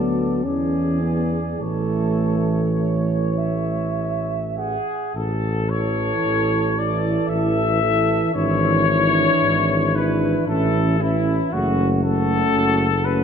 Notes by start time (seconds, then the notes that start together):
Already playing: D2 F#3 B3 A4 D5
0.44 E2 E3 C#4 G#4 D5
1.01 B3
1.60 A1 E3 A3 A4 C#5
2.80 C#5
3.38 E5
4.58 G#4 F#5
5.16 A1 A4
5.70 E3 E4 A4 C#5
6.25 A1
6.77 E3 E4 A4 D5
7.29 A1 E5
7.81 E3 E4 A4
8.34 G#1 E3 D4 E4 C#5
8.88 E3 D4 E4
9.42 G#1
9.95 E3 D4 E4 B4
10.47 A1 E3 C#4 E4 A4
10.98 E3 C#4 E4
11.51 F#1 A3 C#4 F#4
12.03 A3 C#4 F#4 A4
12.54 F#1
13.03 A3 C#4 F#4 B4